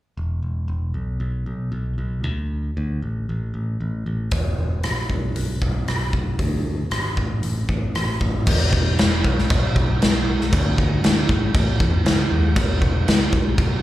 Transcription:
0.17 0.40 E1 medium
0.43 0.66 E1 medium
0.68 0.91 E1 medium
0.94 1.17 B1 medium
1.20 1.43 B1 medium
1.46 1.69 B1 medium
1.72 1.95 B1 medium
1.98 2.24 B1 medium
2.24 2.70 D2 medium
2.77 3.00 D2 medium
3.02 3.25 A1 medium
3.29 3.52 A1 medium
3.54 3.77 A1 medium
3.81 4.03 A1 medium
4.06 4.29 A1 medium
4.31 4.55 E1 medium
4.31 kick loud
4.31 open hi-hat soft
4.59 4.81 E1 medium
4.83 5.07 A#1 medium
4.83 cross-stick loud
4.83 open hi-hat soft
5.10 5.33 B1 medium
5.10 kick medium
5.36 5.59 B1 medium
5.36 open hi-hat soft
5.62 5.85 B1 medium
5.62 kick medium
5.88 6.11 B1 medium
5.88 cross-stick medium
5.88 open hi-hat soft
6.13 6.36 B1 medium
6.13 kick medium
6.39 6.85 D2 medium
6.39 kick medium
6.39 open hi-hat soft
6.91 7.14 G#1 medium
6.91 cross-stick loud
6.91 open hi-hat soft
7.17 7.40 A1 medium
7.17 kick medium
7.43 7.66 A1 medium
7.43 open hi-hat soft
7.69 7.92 A1 medium
7.69 kick medium
7.95 8.18 A1 medium
7.95 cross-stick medium
7.95 open hi-hat soft
8.20 8.49 A1 medium
8.20 kick medium
8.47 8.69 E1 loud
8.47 kick loud
8.47 crash loud
8.47 crash medium
8.73 8.94 E1 medium
8.73 kick medium
8.99 9.25 E1 medium
8.99 snare loud
8.99 crash medium
9.24 9.46 B1 medium
9.24 kick medium
9.38 snare soft
9.50 9.71 B1 loud
9.50 kick loud
9.50 crash medium
9.76 9.97 B1 medium
9.76 kick medium
10.02 10.23 B1 medium
10.02 snare loud
10.02 crash medium
10.29 10.49 B1 loud
10.41 snare soft
10.53 10.74 D2 loud
10.53 kick loud
10.53 crash medium
10.78 10.99 D2 loud
10.78 kick medium
11.04 11.25 D2 loud
11.04 snare loud
11.04 crash medium
11.29 11.50 A1 medium
11.29 kick medium
11.54 11.76 A1 medium
11.54 kick loud
11.54 crash medium
11.80 12.01 E2 medium
11.80 kick medium
12.05 12.26 C#2 loud
12.05 snare loud
12.05 crash medium
12.31 12.52 D#2 medium
12.56 kick loud
12.56 crash medium
12.82 13.03 E1 medium
12.82 kick medium
13.08 13.29 C#2 loud
13.08 snare loud
13.08 crash medium
13.33 13.54 B1 medium
13.33 kick medium
13.58 13.80 B1 medium
13.58 kick loud
13.58 crash medium

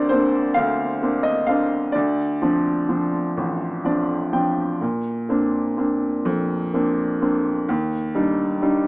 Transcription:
0.00 0.56 D2 medium
0.00 0.11 A#3 soft
0.00 0.11 C4 soft
0.00 0.10 D4 medium
0.00 0.09 C5 medium
0.00 0.11 D5 medium
0.09 0.84 A#3 soft
0.09 0.84 C4 soft
0.09 0.85 D4 soft
0.09 0.57 C5 medium
0.54 1.91 D2 medium
0.54 1.26 F5 medium
1.02 1.47 A#3 soft
1.02 1.47 C4 soft
1.02 1.48 D4 soft
1.23 1.48 D#5 medium
1.47 1.86 A#3 soft
1.47 1.86 C4 soft
1.47 1.86 D4 soft
1.47 1.95 F5 medium
1.92 4.77 D2 medium
1.92 2.96 D5 medium
2.42 2.87 F3 soft
2.42 2.88 C4 soft
2.42 2.88 D4 soft
2.89 3.66 F3 soft
2.89 3.66 C4 soft
2.89 3.66 D4 soft
3.37 4.77 A1 soft
3.84 4.31 F3 soft
3.84 4.32 C4 soft
3.84 4.32 D4 soft
3.84 4.30 D5 soft
4.33 4.71 F3 soft
4.33 4.72 C4 soft
4.33 4.72 D4 soft
4.33 4.78 G5 soft
4.81 7.65 A#2 soft
5.29 5.76 A#3 soft
5.29 5.76 C4 soft
5.29 5.77 D4 soft
5.77 6.54 A#3 soft
5.77 6.55 C4 soft
5.77 6.55 D4 soft
6.25 7.65 F2 medium
6.74 7.20 A#3 soft
6.74 7.21 C4 soft
6.74 7.21 D4 soft
7.22 7.59 A#3 soft
7.22 7.60 C4 soft
7.22 7.60 D4 soft
7.69 8.87 D#2 medium
8.15 8.60 G3 soft
8.15 8.61 D4 soft
8.15 8.61 D#4 soft
8.62 8.87 G3 soft
8.62 8.87 D4 soft
8.62 8.87 D#4 soft

